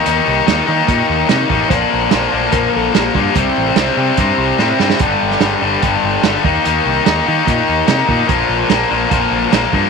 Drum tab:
HH |x---x---x---x---|x---x---x---x---|x---x---x-------|x---x---x---x---|
SD |----o-------o---|----o-------o---|----o-------o-oo|---oo-------o---|
BD |--------o-----o-|o-------o-----o-|o-------o-------|o-------o-----o-|

HH |x---x---x---x---|x---x---x---x---|
SD |----o-------o---|----o-------o---|
BD |--------o-----o-|o-------o-----o-|